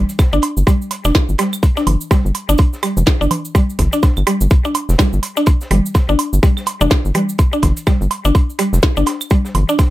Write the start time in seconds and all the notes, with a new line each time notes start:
0.09 closed hi-hat, cabasa
0.19 kick, snare, closed hi-hat, cabasa, claves, low woodblock
0.33 G1 D4, cabasa
0.42 closed hi-hat, open hi-hat, low woodblock
0.57 G1, cabasa
0.67 G3, kick, closed hi-hat, cabasa, low woodblock
0.82 cabasa
0.91 closed hi-hat, open hi-hat, low woodblock
1.05 F1 D4, snare, cabasa
1.15 kick, snare, closed hi-hat, cabasa, low woodblock
1.29 G1, cabasa
1.38 G3, snare, closed hi-hat, open hi-hat, low woodblock
1.53 cabasa, claves
1.63 kick, closed hi-hat, cabasa, low woodblock
1.77 D4, snare, cabasa
1.87 G1, closed hi-hat, open hi-hat, low conga, low woodblock
2.01 cabasa
2.11 G3, kick, snare, closed hi-hat, cabasa, low woodblock
2.25 G1, cabasa
2.35 closed hi-hat, open hi-hat, low woodblock
2.49 G1 D4, cabasa
2.58 kick, closed hi-hat, cabasa, low woodblock
2.73 snare, cabasa
2.83 G3, closed hi-hat, open hi-hat, claves, low woodblock
2.97 F1, low conga, cabasa
3.06 kick, snare, closed hi-hat, cabasa, low woodblock
3.21 G1 D4, cabasa
3.31 closed hi-hat, open hi-hat, low conga, low woodblock
3.45 cabasa
3.55 G3, kick, closed hi-hat, cabasa, low woodblock
3.70 cabasa
3.79 G1, kick, snare, closed hi-hat, open hi-hat, low conga, low woodblock
3.92 D4, closed hi-hat, cabasa
4.03 kick, snare, closed hi-hat, cabasa, low woodblock
4.17 G1, cabasa, claves
4.27 G3, closed hi-hat, open hi-hat, low woodblock
4.41 G1, cabasa
4.51 kick, closed hi-hat, cabasa, low woodblock
4.65 D4, cabasa
4.74 closed hi-hat, open hi-hat, low woodblock
4.89 F1, snare, cabasa
4.98 G3, kick, snare, closed hi-hat, cabasa, low woodblock
5.13 G1, cabasa
5.23 closed hi-hat, open hi-hat, low woodblock
5.37 D4, closed hi-hat, cabasa
5.46 kick, closed hi-hat, cabasa, low woodblock
5.61 snare, cabasa
5.71 G1 G3, closed hi-hat, open hi-hat, low conga, low woodblock
5.86 cabasa
5.94 kick, snare, closed hi-hat, cabasa, low woodblock
6.09 G1 D4, cabasa
6.19 closed hi-hat, open hi-hat, low woodblock
6.33 G1, cabasa
6.43 G3, kick, closed hi-hat, cabasa, low woodblock
6.57 snare, cabasa, claves
6.66 closed hi-hat, open hi-hat, low woodblock
6.81 F1 D4, low conga, cabasa
6.90 kick, snare, closed hi-hat, cabasa, low woodblock
7.05 G1, cabasa
7.14 G3, closed hi-hat, open hi-hat, low conga, low woodblock
7.29 cabasa
7.38 kick, closed hi-hat, cabasa, low woodblock
7.53 D4, cabasa
7.62 G1, kick, snare, closed hi-hat, open hi-hat, low conga, low woodblock
7.77 closed hi-hat, cabasa
7.87 G3, kick, snare, closed hi-hat, cabasa, claves, low woodblock
8.01 G1, cabasa
8.11 closed hi-hat, open hi-hat, low woodblock
8.25 G1 D4, cabasa
8.35 kick, closed hi-hat, cabasa, low woodblock
8.50 cabasa
8.59 G3, closed hi-hat, open hi-hat, low woodblock
8.73 F1, snare, cabasa
8.83 kick, snare, closed hi-hat, cabasa, low woodblock
8.97 G1 D4, cabasa
9.06 snare, closed hi-hat, open hi-hat, low woodblock
9.21 cabasa, claves
9.30 G3, kick, closed hi-hat, cabasa, low woodblock
9.45 snare, cabasa
9.55 G1, closed hi-hat, open hi-hat, low conga, low woodblock
9.69 D4, cabasa
9.79 kick, snare, closed hi-hat, cabasa, low woodblock